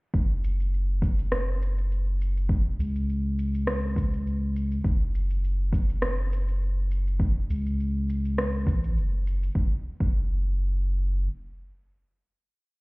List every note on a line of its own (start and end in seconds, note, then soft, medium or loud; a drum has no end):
0.14 2.72 F#1 medium
0.14 kick loud
0.14 shaker soft
0.44 shaker medium
0.60 shaker soft
0.74 shaker soft
1.02 kick loud
1.02 shaker medium
1.19 shaker soft
1.32 cross-stick medium
1.32 shaker soft
1.62 shaker medium
1.78 shaker soft
1.92 shaker soft
2.21 shaker medium
2.37 shaker soft
2.49 kick loud
2.49 shaker soft
2.79 4.79 C#2 medium
2.79 shaker medium
2.96 shaker soft
3.09 shaker soft
3.39 shaker medium
3.54 shaker soft
3.67 cross-stick medium
3.67 shaker soft
3.96 kick loud
3.96 shaker medium
4.13 shaker soft
4.27 shaker soft
4.56 shaker medium
4.71 shaker soft
4.84 7.43 F#1 medium
4.84 kick loud
4.84 shaker soft
5.15 shaker medium
5.30 shaker soft
5.44 shaker soft
5.73 kick loud
5.73 shaker medium
5.89 shaker soft
6.02 cross-stick medium
6.02 shaker soft
6.32 shaker medium
6.48 shaker soft
6.62 shaker soft
6.91 shaker medium
7.07 shaker soft
7.20 kick loud
7.20 shaker soft
7.50 8.66 C#2 medium
7.50 shaker medium
7.66 shaker soft
7.80 shaker soft
8.09 shaker medium
8.25 shaker soft
8.38 cross-stick medium
8.38 shaker soft
8.67 8.98 A1 medium
8.67 kick loud
8.67 shaker medium
8.84 shaker soft
8.96 9.49 F#1 medium
8.96 shaker soft
9.27 shaker medium
9.43 shaker soft
9.55 9.72 F#1 loud
9.55 kick loud
10.00 11.28 F#1 loud
10.00 kick loud